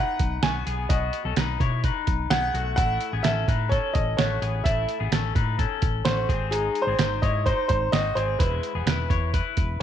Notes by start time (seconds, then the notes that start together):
Already playing: D#4 B4 F#5
0.19 B1, kick, closed hi-hat
0.43 B1 B3 F#4 G#5, snare, closed hi-hat
0.66 B1 B3 G#4, closed hi-hat
0.89 B1 B3 F#4 D#5, kick, closed hi-hat
1.13 closed hi-hat
1.25 B1 C#4 A4
1.36 B1 D#4 B4, snare, closed hi-hat
1.60 B2 E4 C#5, kick, closed hi-hat
1.84 D#4 B4, kick, closed hi-hat
2.07 B1, kick, closed hi-hat
2.30 B1 B3 G#4 F#5, snare, closed hi-hat
2.54 B1 A3 F#4, closed hi-hat
2.76 A1 A3 E4 F#5, kick, closed hi-hat
3.01 closed hi-hat
3.13 A1 B3 G#4
3.23 A1 C#4 A4 E5, snare, closed hi-hat
3.48 A2 D#4 B4, kick, closed hi-hat
3.69 C#4 A4 C#5, kick, closed hi-hat
3.94 A1 D#5, kick, closed hi-hat
4.17 A1 A3 F#4 C#5, snare, closed hi-hat
4.42 A1 B3 G#4, closed hi-hat
4.64 A1 A3 E4 E5, kick, closed hi-hat
4.89 closed hi-hat
5.00 A1 B3 G#4
5.11 A1 C#4 A4, snare, closed hi-hat
5.35 A2 D#4 B4, kick, closed hi-hat
5.59 C#4 A4, kick, closed hi-hat
5.82 A1, kick, closed hi-hat
6.05 A1 A3 F#4 C5, snare, closed hi-hat
6.29 G#1 C4 G#4, kick, closed hi-hat
6.51 G#3 D#4 G#4, closed hi-hat
6.75 closed hi-hat
6.82 C5
6.87 G#1 C4 G#4
6.98 G#1 D#4 C5, snare, closed hi-hat
7.22 G#2 E4 C#5 D#5, kick, closed hi-hat
7.46 D#4 C5, kick, closed hi-hat
7.68 G#1 C5, kick, closed hi-hat
7.92 G#1 C4 F#4 D#5, snare, closed hi-hat
8.15 G#1 C4 G#4 C5, closed hi-hat
8.39 E1 G#3 E4 B4, kick, closed hi-hat
8.63 closed hi-hat
8.75 E1 B3 G#4
8.86 E1 E4 B4, snare, closed hi-hat
9.10 E2 E4 C#5, kick, closed hi-hat
9.34 E4 B4, kick, closed hi-hat
9.57 E1, kick, closed hi-hat